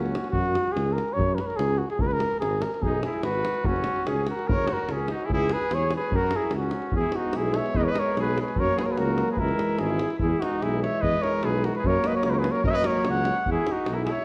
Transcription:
Already playing: C#2 C#4 F#4
0.06 davul high
0.15 davul high
0.24 davul high
0.31 F#2 F#4, davul low
0.46 davul high
0.56 davul high
0.68 davul high
0.72 C#2 G#4
0.77 davul high
0.93 A#4
0.98 davul high
1.08 davul high
1.13 F#2 C#5
1.19 davul low
1.35 A#4, davul high
1.41 B4
1.47 A#4, davul high
1.57 C#2 G#4, davul high
1.78 F#4
1.90 G#4, davul high
1.99 C#2 A#4, davul low
2.07 B4, davul high
2.13 A#4
2.20 davul high
2.31 davul high
2.40 G#1 G#4, davul high
2.62 A#4, davul high
2.74 davul high
2.82 B1 D#4 G#4, davul low
3.03 E4 G#4, davul high
3.13 davul high
3.23 G#1 F#4 B4, davul high
3.35 davul high
3.45 davul high
3.54 davul high
3.64 F#1 C#4 F#4, davul low
3.76 davul high
3.84 davul high
3.96 davul high
4.04 C#2 C#4 G#4, davul high
4.27 F#4, davul high
4.31 A#4
4.39 davul high
4.47 F#1 A#4, davul low
4.52 C#5
4.59 davul high
4.67 F#4, davul high
4.73 A#4
4.79 davul high
4.89 C#2 C#4 G#4, davul high
5.08 D#4, davul high
5.14 F#4
5.21 E4, davul high
5.26 C#2 G#4, davul low
5.33 E4 G#4
5.41 davul high
5.50 G#4, davul high
5.54 B4
5.61 davul high
5.71 E2 G#4 C#5, davul high
5.90 davul high
5.95 G#4 B4
6.01 davul high
6.11 F#2 A#4, davul low
6.16 F#4
6.31 davul high
6.36 E4 G#4
6.42 davul high
6.51 C#2, davul high
6.56 C#4 F#4
6.63 davul high
6.71 davul high
6.82 davul high
6.91 E2 G#3 B3, davul low
6.96 E4 G#4
7.12 F#4, davul high
7.17 D#4
7.33 B1 E4 G#4, davul high
7.54 C#5 E5, davul high
7.66 davul high
7.74 E2 B4 D#5, davul low
7.79 A#4
7.84 B4 C#5
7.91 A#4 D#5
7.95 C#5, davul high
8.17 B1 G#4, davul high
8.22 B4
8.37 G#4, davul high
8.42 B4
8.48 davul high
8.56 F#2 F#3 A#3 A#4, davul low
8.60 C#5
8.77 G#4 B4, davul high
8.83 A#4 C#5
8.91 G#4 B4
8.97 C#2 F#4 A#4, davul high
9.18 davul high
9.28 G#4, davul high
9.33 B4
9.37 C#2 E3 G#3 E4 A#4, davul low
9.48 davul high
9.59 davul high
9.69 davul high
9.79 G#1 E4 G#4, davul high
9.90 davul high
10.00 davul high
10.11 davul high
10.19 E2 E3 G#3 E4 G#4, davul low
10.41 D#4 F#4, davul high
10.63 B1 E4 G#4, davul high
10.82 C#5 E5, davul high
10.95 davul high
11.01 E2 B4 D#5, davul low
11.22 A#4 C#5, davul high
11.43 B1 G#4 B4, davul high
11.64 F#4 A#4, davul high
11.75 G#4 B4, davul high
11.84 F#2 F#3 A#3 A#4 C#5, davul low
12.04 B4 D#5, davul high
12.15 A#4 C#5
12.23 C#2 A#4 C#5, davul high
12.30 A#4 B4
12.35 C#5
12.39 G#4 B4
12.44 davul high
12.52 A#4 C#5
12.56 davul high
12.64 F#2 F#3 A#3 A#4 D#5, davul low
12.71 B4 C#5 E5, davul high
12.75 D#5
12.84 A#4 C#5, davul high
13.04 C#2 C#5, davul high
13.10 F#5
13.17 davul high
13.25 davul high
13.38 davul high
13.46 E2, davul low
13.51 E4 G#4
13.67 davul high
13.72 D#4 F#4
13.86 B1, davul high
13.92 E4 F#4 A#4
14.04 E4 G#4, davul high
14.11 C#5 E5
14.17 davul high

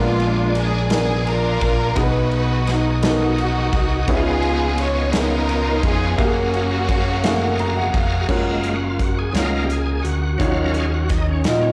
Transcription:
Already playing: A#1 A#2 G#3 B3 D4 F4 G#4 A#4 D5 G#5
0.20 ride
0.55 G#4, ride
0.90 B3 D4 G#4 A#4, snare, ride
1.27 D4 F4 A#4, ride
1.61 A#1, kick, ride
1.95 B1 B2 B3 D#4 F#4 G#4 B4 D#5 F#5, kick, ride
2.32 ride
2.67 D#4, snare, ride
3.02 B3 D#4 F#4 A4, snare, ride
3.11 A#4
3.38 ride
3.73 C2, kick, ride
4.08 C#2 C#3 B3 C#4 D#4 E4 F4 G#4 C#5, kick, ride
4.17 F4
4.43 ride
4.78 C#5, ride
5.12 B3 C#4 D#4 G#4 A#4, snare, ride
5.16 F4
5.49 ride
5.83 F1 G#4, kick, ride
6.18 F#1 A#3 C#4 F#4 G4 G#4 F5 A#5, kick, ride
6.26 G#4
6.54 ride
6.89 kick, ride
7.24 A3 F#4 G#4 F5, snare, ride
7.30 A#3
7.59 A#5, ride
7.77 F#5
7.94 F1 F5, kick, ride
8.29 F#1 G#3 A#3 C#4 F4 F#4 A#4 F5, kick, crash
8.63 closed hi-hat
8.68 F#4
8.84 F4
8.99 F#4, kick, closed hi-hat
9.19 G#4
9.33 C#2 G#3 A#3 C#4 F4 F#4 A#4 F5, snare, closed hi-hat
9.38 A#4
9.64 G4
9.70 G#4, closed hi-hat
10.03 D2 F#4, closed hi-hat
10.38 D#2 D#3 F#3 C#4 D#4 F4 F#4 C#5 F5, kick, closed hi-hat
10.57 A#4
10.73 G#4, closed hi-hat
10.94 F#4
11.09 D#4, kick, snare, closed hi-hat
11.29 C#4
11.44 A#2 A#3 D#4 F4 F#4 D#5, snare, closed hi-hat
11.62 C#4

